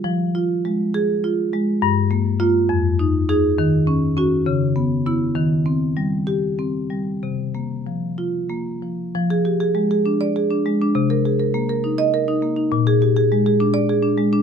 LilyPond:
\new Staff \with { instrumentName = "Marimba" } { \time 6/8 \key f \minor \tempo 4. = 67 << { r4. aes'8. r8. | \key f \dorian r4 f'8 r4 aes'8 | r4 ges'8 r4 fes'8 | r4. g'8. r8. |
r4. f'8. r8. | r4. r16 d''8 r8. | r4. r16 ees''8 r8. | r4. r16 d''8 r8. | } \\ { f8 f'8 aes8. r16 f'8 aes8 | g,8 bes8 bes8 f,8 ees'8 ees'8 | ees8 des'8 des'8 des8 ces'8 ces'8 | ees8 c'8 g8. r16 c'8 g8 |
c8 bes8 f8. r16 bes8 f8 | f16 aes'16 g'16 aes'16 aes16 aes'16 d'8 aes'16 d'16 aes16 d'16 | c16 bes'16 aes'16 bes'16 bes16 bes'16 ees'8 bes'16 ees'16 bes16 ees'16 | bes,16 aes'16 g'16 aes'16 aes16 aes'16 d'8 aes'16 d'16 aes16 d'16 | } >> }